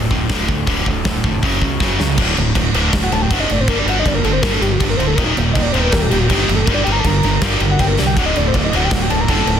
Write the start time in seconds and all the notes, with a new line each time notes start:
Already playing: A2 D3
0.11 D1 D2 A2 D3, kick
0.29 D1 D2 A2 D3, kick, snare, open hi-hat
0.48 D2 A2 D3, kick
0.67 D1 D2 A2 D3, kick, open hi-hat
0.86 D1 D2 A2 D3, kick
1.05 D1 D2 A2 D3, kick, snare, open hi-hat
1.24 F1 D2 A2 D3, kick
1.43 F#1 F#2 C#3 F#3, kick, open hi-hat
1.61 C#2 F#2 C#3 F#3, kick
1.80 F#1 F#2 C#3 F#3, kick, snare
1.99 C#2 F#2 C#3 F#3, snare
2.18 D1 D2 A2 D3 A3 D4 F#4, kick, crash
2.37 D1 D2 A2, crash
2.55 D1 D2 A2, kick, crash
2.74 D1 D2 A2 D3, crash
2.93 D1 D2 A2, kick, snare, crash
3.03 F#5
3.11 D1 D2 A2 A5, crash
3.22 G5
3.30 F#1 D2 A2 D3 F#5, kick, crash
3.40 D#5
3.50 F#1 D2 A2 D5, crash
3.61 C5
3.68 G1 G2 D3 G3 A4 A#4, kick, crash
3.79 D5
3.85 G1 G2 D3 G3 F#5, crash
3.99 D#5
4.06 G1 G2 D3 D5, kick, crash
4.15 A#4
4.24 G1 G2 D3 A4, crash
4.33 C5
4.42 G1 G2 D3 G3 A#4, kick, snare, crash
4.53 A4
4.61 G1 G2 D3 G4, crash
4.72 F#4
4.79 G1 G2 D3 G4, kick, crash
4.90 A#4
4.97 D1 G2 D3 C5, crash
5.07 A4
5.15 D#1 D#2 A#2 D#3 A#4, kick, crash
5.20 D#3 A#3 D#4 G4
5.24 D#4
5.36 D#1 D#2 A#2, crash
5.53 D#1 D#2 A#2 D#5, kick, crash
5.62 D5
5.72 D#1 D#2 A#2 D#3 C5, crash
5.81 B4
5.92 D#1 D#2 A#2 A#4, kick, snare, crash
6.01 A4
6.10 D#1 D#2 A#2 G4, crash
6.20 F#4
6.28 G1 D#2 A#2 D#3 G4, kick, crash
6.48 F#1 D#2 A#2, crash
6.55 A4
6.66 G1 G2 D3 G3 D4 G4 A#4, kick, crash
6.74 D5
6.84 G1 G2 D3 G3 G5, crash
6.92 A#5
7.00 A5
7.04 G1 G2 D3 A#5, kick, crash
7.23 G1 G2 D3, crash
7.41 G1 G2 D3 G3, kick, snare, crash
7.60 G1 G2 D3, crash
7.71 F#5
7.79 G1 G2 D3 G5, kick, crash
7.88 A#4
7.98 C2 G2 D3 D5, snare
8.07 G5
8.16 D1 D2 A2 D3 A3 F#4 F#5, kick, crash
8.26 D#5
8.35 D1 D2 A2 D5, crash
8.48 C5
8.54 D1 D2 A2 D5, kick, crash
8.64 D#5
8.73 D1 D2 A2 D3 F#5, crash
8.85 G5
8.91 D1 D2 A2 F#5, kick, snare, crash
9.02 G5
9.09 D1 D2 A2 D3 A5, crash
9.21 A#5
9.28 F#1 D2 A2 D3 A5, kick, crash
9.46 D1 D2 A2, crash